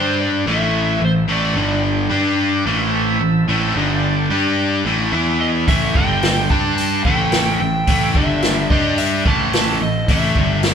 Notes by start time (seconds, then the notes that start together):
Already playing: G2 G3 D4 G4 C5 D5
0.20 D5
0.46 A1 A2 E3 A3 C#4 F4 A#4 E5 F5
0.68 C4 E4 A4 E5
1.01 A1 A2 E3
1.05 C5
1.28 A1 A2 E3 A3
1.32 D5
1.55 G1 G2 D3 G3
1.59 D#4 G#4 D#5
1.78 D4 G4 D5
2.09 G2 G3 D4 G4
2.66 A1 A2 E3 A3 C#4 F4 A#4 F5
2.86 C4 E4 A4 E5
3.19 A1 A2 E3
3.47 A1 A2 E3 A3
3.74 G1 G2 D3 G3 D#4 G#4 D#5
3.94 D4 G4 D5
4.30 G2 G3 D4 G4
4.85 A1 A2 E3 A3
5.13 E2 E3 B3 E4 B4 E5
5.41 D#5
5.68 A1 A2 E3 A3 E5, kick, open hi-hat
5.93 G1 G2 D3 G3 D#4 G#4 D#5 G5, kick
6.11 D4 G4 D5
6.22 snare, open hi-hat
6.50 G2 G3 D4 G4 A5, kick
6.77 A5, open hi-hat
7.05 A1 A2 E3 A3 C4 E4 A4 E5 G5, kick
7.32 snare, open hi-hat
7.60 A1 A2 E3 G5
7.87 A1 A2 E3 A3, kick, open hi-hat
8.14 G1 G2 D3 G3 D4 G4 D5 E5, kick
8.42 snare, open hi-hat
8.70 G2 G3 D4 G4 D#5, kick
8.98 E5, open hi-hat
9.25 A1 A2 E3 A3 C#4 F4 A#4 F5 A5, kick
9.42 C4 E4 A4 E5
9.53 snare, open hi-hat
9.80 A1 A2 E3 D#5
10.08 A1 A2 E3 A3 E5, kick, open hi-hat
10.34 G1 G2 D3 G3 D4 G4 D5, kick
10.63 snare, open hi-hat